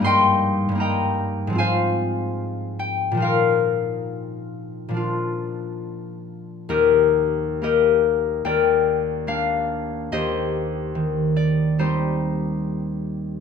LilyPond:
<<
  \new Staff \with { instrumentName = "Harp" } { \time 4/4 \key ees \major \tempo 4 = 72 << { c'''4 bes''4 aes''4. g''8 | f''1 | bes'4 ees''4 g''4 f''4 | ees''4. d''8 c''2 | } \\ { <bes' ees'' g'' bes''>4 <ees'' g''>4 <c'' f''>2 | bes'1 | <ees' g'>4 <g' bes'>4 <bes' d''>2 | <g' c''>2 <ees' g'>2 | } >> }
  \new Staff \with { instrumentName = "Harp" } { \clef bass \time 4/4 \key ees \major <g, g bes ees'>4 <g, g bes ees'>4 <aes, f c' f'>2 | <bes, f ees' f'>2 <bes, f d' f'>2 | ees,4 <bes ees'>4 ees,4 <bes d'>4 | ees,4 ees4 <g c'>2 | }
>>